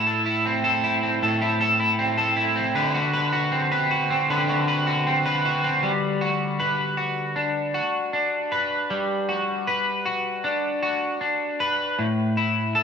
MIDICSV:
0, 0, Header, 1, 2, 480
1, 0, Start_track
1, 0, Key_signature, 1, "major"
1, 0, Tempo, 769231
1, 1720, Time_signature, 4, 2, 24, 8
1, 8007, End_track
2, 0, Start_track
2, 0, Title_t, "Clean electric guitar"
2, 0, Program_c, 0, 27
2, 0, Note_on_c, 0, 45, 96
2, 0, Note_on_c, 0, 64, 64
2, 42, Note_on_c, 0, 69, 70
2, 157, Note_off_c, 0, 64, 0
2, 160, Note_on_c, 0, 64, 72
2, 284, Note_on_c, 0, 60, 67
2, 397, Note_off_c, 0, 69, 0
2, 400, Note_on_c, 0, 69, 65
2, 520, Note_off_c, 0, 64, 0
2, 522, Note_on_c, 0, 64, 61
2, 640, Note_off_c, 0, 60, 0
2, 643, Note_on_c, 0, 60, 60
2, 756, Note_off_c, 0, 45, 0
2, 763, Note_on_c, 0, 45, 88
2, 765, Note_off_c, 0, 69, 0
2, 767, Note_on_c, 0, 69, 66
2, 881, Note_off_c, 0, 64, 0
2, 883, Note_on_c, 0, 64, 62
2, 1000, Note_off_c, 0, 69, 0
2, 1002, Note_on_c, 0, 69, 70
2, 1119, Note_off_c, 0, 64, 0
2, 1122, Note_on_c, 0, 64, 68
2, 1237, Note_off_c, 0, 60, 0
2, 1239, Note_on_c, 0, 60, 71
2, 1355, Note_off_c, 0, 69, 0
2, 1358, Note_on_c, 0, 69, 78
2, 1473, Note_off_c, 0, 64, 0
2, 1476, Note_on_c, 0, 64, 66
2, 1592, Note_off_c, 0, 60, 0
2, 1595, Note_on_c, 0, 60, 64
2, 1716, Note_off_c, 0, 69, 0
2, 1716, Note_on_c, 0, 50, 88
2, 1719, Note_on_c, 0, 71, 72
2, 1769, Note_off_c, 0, 45, 0
2, 1835, Note_off_c, 0, 64, 0
2, 1838, Note_on_c, 0, 66, 62
2, 1856, Note_off_c, 0, 60, 0
2, 1953, Note_off_c, 0, 71, 0
2, 1956, Note_on_c, 0, 71, 73
2, 2072, Note_off_c, 0, 66, 0
2, 2075, Note_on_c, 0, 66, 69
2, 2196, Note_on_c, 0, 60, 65
2, 2316, Note_off_c, 0, 71, 0
2, 2319, Note_on_c, 0, 71, 65
2, 2436, Note_off_c, 0, 66, 0
2, 2438, Note_on_c, 0, 66, 56
2, 2553, Note_off_c, 0, 60, 0
2, 2561, Note_on_c, 0, 60, 66
2, 2680, Note_off_c, 0, 50, 0
2, 2682, Note_on_c, 0, 50, 90
2, 2683, Note_off_c, 0, 71, 0
2, 2685, Note_on_c, 0, 71, 72
2, 2798, Note_off_c, 0, 66, 0
2, 2801, Note_on_c, 0, 66, 67
2, 2918, Note_off_c, 0, 71, 0
2, 2921, Note_on_c, 0, 71, 60
2, 3035, Note_off_c, 0, 66, 0
2, 3037, Note_on_c, 0, 66, 68
2, 3154, Note_off_c, 0, 60, 0
2, 3161, Note_on_c, 0, 60, 68
2, 3277, Note_off_c, 0, 71, 0
2, 3279, Note_on_c, 0, 71, 73
2, 3400, Note_off_c, 0, 66, 0
2, 3402, Note_on_c, 0, 66, 65
2, 3511, Note_off_c, 0, 60, 0
2, 3519, Note_on_c, 0, 60, 70
2, 3637, Note_on_c, 0, 55, 77
2, 3687, Note_off_c, 0, 60, 0
2, 3874, Note_off_c, 0, 66, 0
2, 3876, Note_on_c, 0, 66, 52
2, 4114, Note_off_c, 0, 71, 0
2, 4116, Note_on_c, 0, 71, 55
2, 4344, Note_off_c, 0, 66, 0
2, 4351, Note_on_c, 0, 66, 46
2, 4592, Note_on_c, 0, 62, 49
2, 4824, Note_off_c, 0, 66, 0
2, 4831, Note_on_c, 0, 66, 53
2, 4866, Note_off_c, 0, 50, 0
2, 5067, Note_off_c, 0, 62, 0
2, 5074, Note_on_c, 0, 62, 49
2, 5308, Note_off_c, 0, 71, 0
2, 5315, Note_on_c, 0, 71, 52
2, 5553, Note_off_c, 0, 55, 0
2, 5556, Note_on_c, 0, 55, 68
2, 5788, Note_off_c, 0, 66, 0
2, 5795, Note_on_c, 0, 66, 53
2, 6029, Note_off_c, 0, 71, 0
2, 6037, Note_on_c, 0, 71, 55
2, 6267, Note_off_c, 0, 66, 0
2, 6274, Note_on_c, 0, 66, 47
2, 6508, Note_off_c, 0, 62, 0
2, 6515, Note_on_c, 0, 62, 55
2, 6747, Note_off_c, 0, 66, 0
2, 6755, Note_on_c, 0, 66, 54
2, 6986, Note_off_c, 0, 62, 0
2, 6994, Note_on_c, 0, 62, 47
2, 7232, Note_off_c, 0, 71, 0
2, 7239, Note_on_c, 0, 71, 59
2, 7479, Note_on_c, 0, 45, 75
2, 7498, Note_off_c, 0, 55, 0
2, 7525, Note_off_c, 0, 62, 0
2, 7525, Note_off_c, 0, 66, 0
2, 7527, Note_off_c, 0, 71, 0
2, 7720, Note_on_c, 0, 64, 53
2, 7956, Note_on_c, 0, 69, 60
2, 8007, Note_off_c, 0, 45, 0
2, 8007, Note_off_c, 0, 64, 0
2, 8007, Note_off_c, 0, 69, 0
2, 8007, End_track
0, 0, End_of_file